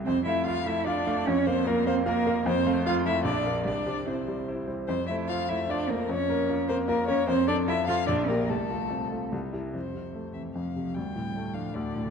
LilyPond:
<<
  \new Staff \with { instrumentName = "Violin" } { \time 3/4 \key f \major \tempo 4 = 150 c''8 e''8 f''8 e''8 d''4 | des''8 c''8 bes'8 c''8 bes'4 | c''4 f''8 e''8 d''4 | d''4 c''4. r8 |
c''8 e''8 f''8 e''8 d''8 bes'8 | des''4. c''8 bes'8 des''8 | c''8 d''8 e''8 f''8 d''8 bes'8 | a'2 r4 |
c''4. e''8 f''4 | g''4. f''8 d''4 | }
  \new Staff \with { instrumentName = "Grand piano" } { \time 3/4 \key f \major f,8 <a f''>8 <f' f''>8 <a f''>8 <f' f''>8 <a f''>8 | f,8 <bes f''>8 <f' f''>8 <bes f''>8 <f' f''>8 <bes f''>8 | f,8 <a f''>8 <f' f''>8 <a f''>8 bes,,8 <bes f''>8 | c,8 <g c''>8 <e' c''>8 <g c''>8 <e' c''>8 <g c''>8 |
f,8 <a c''>8 <f' c''>8 <a c''>8 <f' c''>8 <a c''>8 | f,8 <bes bes'>8 <f' bes'>8 <bes bes'>8 <f' bes'>8 <bes bes'>8 | f,8 <c' a'>8 <f' a'>8 <c' a'>8 bes,,8 <bes g'>8 | c,8 <a f'>8 <c' f'>8 <a f'>8 c,8 <g e'>8 |
f,8 c8 a8 c'8 f,8 c8 | d,8 a,8 a8 d'8 d,8 a,8 | }
  \new Staff \with { instrumentName = "Cello" } { \time 3/4 \key f \major c'8 e'8 f'8 e'8 d'4 | des'8 c'8 bes8 c'8 bes4 | c'4 f'8 e'8 d'4 | d'4 c'4. r8 |
c'8 e'8 f'8 e'8 d'8 bes8 | des'4. c'8 bes8 des'8 | c'8 d'8 e'8 f'8 d'8 bes8 | a2 r4 |
c4. e8 f4 | g4. f8 d4 | }
>>